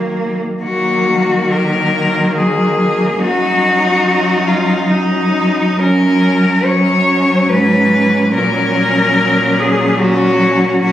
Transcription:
Already playing: D#3 F#3 A#3
0.62 D#3 F#3 A#3 F#4
1.50 F#3 A#3 A#4
2.38 G#4
3.19 F#2 F#3 D#4 F#4
4.47 F4
4.88 F#3 D#4
5.78 F#2 F#3 C#4 A#4
6.64 F#3 C#4 C#5
7.47 G#2 B4
8.32 A#2 F#3 C#4 A#4
9.59 G#4
10.00 F#3 C#4 F#4
10.81 A#2 F#3 C#4 F#4

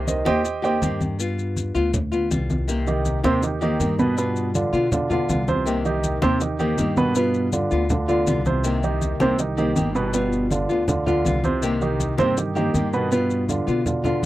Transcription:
Already playing: C2 C3 D#3 A#3 C4 G4
0.07 D#4 A#4 C5 D#5, high conga, maracas
0.25 D#2 D#3 A#3 C4 G4 C5 D#5 G5, high conga, maracas
0.44 muted nylon-string guitar stroke, high conga, maracas
0.62 D#3 A#3 C4 G4 C5 D#5 G5, high conga, maracas
0.81 G2 D#3 A#3 C4 G4, high conga, maracas
1.01 high conga, maracas
1.19 G3 B3 F4, high conga, maracas
1.38 high conga, maracas
1.57 high conga, maracas
1.75 D2 B3 F4, maracas
1.93 muted nylon-string guitar stroke, high conga, low conga, maracas
2.12 B3 F4, high conga, maracas
2.30 C2 G3 B3 F4, high conga, maracas
2.50 high conga, maracas
2.68 C3 D#3 A#3 C4 G4, high conga, maracas
2.87 D#3 D#4 G4, high conga, maracas
3.05 high conga, maracas
3.23 D#2 C3 D#3 A#3 C4 G4 C5, high conga, maracas
3.42 D#3 D#4 G4, muted nylon-string guitar stroke, high conga, maracas
3.61 D#3 A#3 C4 D#4 G4, high conga, maracas
3.80 G2 D#3 A#3 C4 G4, high conga, maracas
3.99 B2 B3 B4, high conga, maracas
4.17 B2 G3 B3 F4 B4, high conga, maracas
4.36 high conga, maracas
4.55 D3 D4 F4, high conga, maracas
4.73 B2 B3 F4, maracas
4.91 D3 D4 F4, muted nylon-string guitar stroke, high conga, low conga, maracas
5.10 D3 B3 D4 F4, high conga, low conga, maracas
5.28 C2 G3 B3 F4, high conga, maracas
5.48 C3 C5, high conga, maracas
5.65 C3 D#3 A#3 C4 G4, high conga, maracas
5.85 D#3 D#4 G4, high conga, maracas
6.04 high conga, maracas
6.22 D#2 C3 D#3 A#3 C4 G4 C5, high conga, maracas
6.40 D#3 D#4 G4, muted nylon-string guitar stroke, high conga, maracas
6.59 D#3 A#3 C4 D#4 G4, high conga, maracas
6.78 G2 D#3 A#3 C4 G4, high conga, maracas
6.97 B2 B3 B4, high conga, maracas
7.15 B2 G3 B3 F4 B4, high conga, maracas
7.34 high conga, maracas
7.53 D3 D4 F4, high conga, maracas
7.71 D2 B3 F4, maracas
7.90 D3 D4 F4, muted nylon-string guitar stroke, high conga, low conga, maracas
8.08 D3 B3 D4 F4, high conga, maracas
8.27 C2 G3 B3 F4, high conga, maracas
8.46 C3 C5, high conga, maracas
8.64 C3 D#3 A#3 C4 G4, high conga, maracas
8.83 D#3 D#4 G4, high conga, maracas
9.02 high conga, maracas
9.20 C2 C3 D#3 A#3 C4 G4 C5, high conga, maracas
9.39 D#3 D#4 G4, muted nylon-string guitar stroke, high conga, maracas
9.57 D#3 A#3 C4 D#4 G4, high conga, maracas
9.75 G1 D#3 A#3 C4 G4, high conga, maracas
9.95 B2 B3 B4, maracas
10.13 B2 G3 B3 F4 B4, high conga, maracas
10.32 high conga, maracas
10.51 D3 D4 F4, high conga, maracas
10.69 D2 B3 F4, maracas
10.88 D3 D4 F4, muted nylon-string guitar stroke, high conga, low conga, maracas
11.06 D3 B3 D4 F4, high conga, low conga, maracas
11.25 C2 G3 B3 F4, high conga, maracas
11.44 C3 C5, high conga, maracas
11.62 C3 D#3 A#3 C4 G4, high conga, maracas
11.81 D#3 D#4 G4, high conga, maracas
12.00 high conga, maracas
12.17 G2 C3 D#3 A#3 C4 G4 C5, high conga, maracas
12.36 D#3 D#4 G4, muted nylon-string guitar stroke, high conga, maracas
12.55 D#3 A#3 C4 D#4 G4, high conga, maracas
12.74 G2 D#3 A#3 C4 G4, high conga, maracas
12.93 B2 B3 B4, maracas
13.11 B2 G3 B3 F4 B4, high conga, maracas
13.30 high conga, maracas
13.49 D3 D4 F4, high conga, maracas
13.67 B2 B3 F4, maracas
13.86 D3 D4 F4, muted nylon-string guitar stroke, high conga, low conga, maracas
14.04 D3 B3 D4 F4, high conga, low conga, maracas
14.22 G3

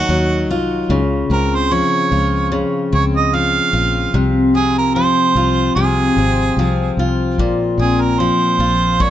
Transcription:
Already playing: D#3 D#4 F#4
0.09 D#2 F#3
0.49 C2 F4
0.89 C#2 C#3
1.30 C#2 C4 A#4
1.55 C5
1.71 F3 C#5
2.12 C#2 F4
2.52 C#3
2.92 C#2 C4 C#5
3.17 D#5
3.34 F3 F5
3.73 A#1 F4
4.14 C2 C3
4.55 C4 G#4
4.78 A#4
4.95 F3 C5
5.35 C2 F4
5.75 C2 C3 G#4
6.16 G#1 C4
6.57 C2 F3
6.97 C2 F4
7.38 A#1 A#2, kick
7.78 A#1 C4 G#4
8.01 A#4
8.19 F3 C5
8.59 A#1 F4
9.00 A#2 C#5, kick

